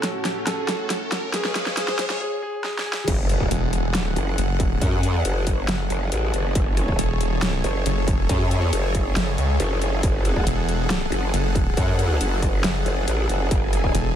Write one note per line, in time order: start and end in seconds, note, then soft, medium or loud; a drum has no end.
0.00 1.32 A2 medium
0.00 1.32 C#4 medium
0.00 1.32 F#4 medium
0.00 0.38 A4 medium
0.00 1.30 A4 medium
0.00 snare medium
0.00 closed hi-hat medium
0.00 riser medium
0.25 snare medium
0.25 closed hi-hat medium
0.47 1.25 A4 medium
0.47 snare medium
0.47 closed hi-hat medium
0.68 snare medium
0.68 closed hi-hat medium
0.90 snare medium
0.90 closed hi-hat medium
1.12 snare medium
1.12 closed hi-hat medium
1.34 2.20 G#3 medium
1.34 1.75 G#4 medium
1.34 2.20 G#4 medium
1.34 2.20 C#5 medium
1.34 2.20 F5 medium
1.34 2.20 G#5 medium
1.34 snare medium
1.34 closed hi-hat medium
1.45 snare medium
1.55 snare loud
1.55 closed hi-hat medium
1.66 snare medium
1.77 2.19 G#4 loud
1.77 snare loud
1.77 closed hi-hat medium
1.88 snare medium
1.99 snare loud
1.99 closed hi-hat medium
2.10 snare medium
2.21 2.41 G#4 loud
2.42 2.62 G#4 loud
2.64 2.84 G#4 loud
2.64 snare medium
2.79 snare medium
2.86 3.06 G#4 loud
2.93 snare loud
3.08 3.49 F#1 loud
3.08 14.16 G#4 medium
3.08 14.16 A4 medium
3.08 6.54 F#5 medium
3.08 kick loud
3.08 closed hi-hat medium
3.08 crash loud
3.08 impact medium
3.29 closed hi-hat medium
3.40 kick medium
3.51 3.96 E1 loud
3.51 closed hi-hat medium
3.73 closed hi-hat medium
3.95 4.15 D#1 loud
3.95 snare loud
3.95 closed hi-hat medium
4.16 4.36 F#1 loud
4.16 closed hi-hat medium
4.38 4.80 F#1 loud
4.38 closed hi-hat medium
4.60 kick loud
4.60 closed hi-hat medium
4.81 5.23 F#2 loud
4.81 kick loud
4.81 closed hi-hat medium
5.03 closed hi-hat medium
5.25 5.67 F#1 loud
5.25 closed hi-hat medium
5.47 kick medium
5.47 closed hi-hat medium
5.68 5.89 F#1 loud
5.68 snare loud
5.68 closed hi-hat medium
5.90 6.10 F#1 loud
5.90 closed hi-hat medium
6.12 6.32 A1 loud
6.12 closed hi-hat medium
6.34 6.54 F#1 loud
6.34 closed hi-hat medium
6.55 6.97 F#1 loud
6.55 10.02 C#5 medium
6.55 kick loud
6.55 closed hi-hat medium
6.77 closed hi-hat medium
6.88 kick medium
6.99 7.62 E1 loud
6.99 closed hi-hat medium
7.21 closed hi-hat medium
7.42 snare loud
7.42 closed hi-hat medium
7.64 7.84 F#1 loud
7.64 closed hi-hat medium
7.86 8.28 F#1 loud
7.86 closed hi-hat medium
8.08 kick loud
8.08 closed hi-hat medium
8.29 8.71 F#2 medium
8.29 kick loud
8.29 closed hi-hat medium
8.51 closed hi-hat medium
8.73 9.15 F#1 loud
8.73 closed hi-hat medium
8.95 kick medium
8.95 closed hi-hat medium
9.16 9.36 F#1 medium
9.16 snare loud
9.16 closed hi-hat medium
9.38 9.58 C#2 loud
9.38 closed hi-hat medium
9.60 10.02 F#1 loud
9.60 closed hi-hat medium
9.82 closed hi-hat medium
10.03 10.45 F#1 loud
10.03 13.50 F#5 medium
10.03 kick loud
10.03 closed hi-hat medium
10.25 closed hi-hat medium
10.36 kick medium
10.47 11.10 E1 loud
10.47 closed hi-hat medium
10.69 closed hi-hat medium
10.90 snare loud
10.90 closed hi-hat medium
11.12 11.32 F#1 loud
11.12 closed hi-hat medium
11.34 11.75 F#1 medium
11.34 closed hi-hat medium
11.55 kick loud
11.55 closed hi-hat medium
11.77 12.19 F#2 loud
11.77 kick loud
11.77 closed hi-hat medium
11.99 closed hi-hat medium
12.21 12.62 F#1 loud
12.21 closed hi-hat medium
12.42 kick medium
12.42 closed hi-hat soft
12.64 12.84 F#1 loud
12.64 snare loud
12.64 closed hi-hat medium
12.86 13.06 F#1 loud
12.86 closed hi-hat medium
13.08 13.28 A1 loud
13.08 closed hi-hat medium
13.29 13.49 F#1 loud
13.29 closed hi-hat medium
13.51 13.93 F#1 loud
13.51 14.16 G#5 medium
13.51 kick loud
13.51 closed hi-hat medium
13.73 closed hi-hat medium
13.84 kick medium
13.95 14.16 E1 loud
13.95 closed hi-hat medium